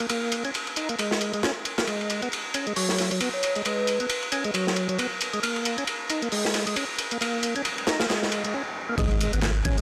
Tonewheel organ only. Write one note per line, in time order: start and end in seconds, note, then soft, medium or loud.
0.00 0.06 A#3 medium
0.10 0.43 A#3 medium
0.45 0.51 C#4 medium
0.77 0.89 D#4 medium
0.89 0.95 A#3 medium
0.99 1.32 G#3 medium
1.34 1.43 G#3 medium
1.43 1.51 C#4 medium
1.78 1.84 A#3 medium
1.87 2.21 G#3 medium
2.22 2.29 B3 medium
2.54 2.66 C#4 medium
2.67 2.73 G#3 medium
2.76 3.10 F#3 medium
3.11 3.20 F#3 medium
3.21 3.29 B3 medium
3.56 3.62 G#3 medium
3.65 3.99 G#3 medium
4.00 4.06 B3 medium
4.32 4.44 C#4 medium
4.45 4.51 G#3 medium
4.54 4.88 F#3 medium
4.89 4.98 F#3 medium
4.99 5.07 B3 medium
5.33 5.40 G#3 medium
5.43 5.77 A#3 medium
5.78 5.84 C#4 medium
6.10 6.22 D#4 medium
6.22 6.29 A#3 medium
6.32 6.66 G#3 medium
6.67 6.76 G#3 medium
6.76 6.85 C#4 medium
7.11 7.18 A#3 medium
7.21 7.55 A#3 medium
7.56 7.62 C#4 medium
7.87 7.99 D#4 medium
8.00 8.06 A#3 medium
8.10 8.43 G#3 medium
8.44 8.54 G#3 medium
8.54 8.62 C#4 medium
8.89 8.95 A#3 medium
8.99 9.32 G#3 medium
9.33 9.40 B3 medium
9.65 9.77 C#4 medium
9.78 9.81 G#3 medium